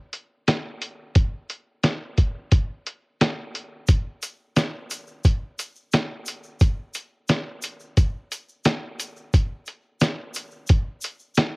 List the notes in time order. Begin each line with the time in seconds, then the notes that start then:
0.13 closed hi-hat
0.48 snare, closed hi-hat
0.82 closed hi-hat
1.15 kick, closed hi-hat
1.50 closed hi-hat
1.83 snare, closed hi-hat
2.18 kick, closed hi-hat
2.52 kick, closed hi-hat
2.87 closed hi-hat
3.21 snare, closed hi-hat
3.55 closed hi-hat
3.87 kick, closed hi-hat, shaker
4.22 closed hi-hat, shaker
4.56 snare, closed hi-hat, shaker
4.90 closed hi-hat, shaker
5.07 shaker
5.24 kick, closed hi-hat, shaker
5.59 closed hi-hat, shaker
5.76 shaker
5.92 snare, closed hi-hat, shaker
6.26 closed hi-hat, shaker
6.43 shaker
6.60 kick, closed hi-hat, shaker
6.94 closed hi-hat, shaker
7.28 snare, closed hi-hat, shaker
7.62 closed hi-hat, shaker
7.80 shaker
7.97 kick, closed hi-hat, shaker
8.32 closed hi-hat, shaker
8.49 shaker
8.64 snare, closed hi-hat, shaker
9.00 closed hi-hat, shaker
9.16 shaker
9.33 kick, closed hi-hat, shaker
9.66 closed hi-hat, shaker
10.00 snare, closed hi-hat, shaker
10.34 closed hi-hat, shaker
10.51 shaker
10.67 kick, closed hi-hat, shaker
11.01 closed hi-hat, shaker
11.19 shaker
11.35 snare, closed hi-hat, shaker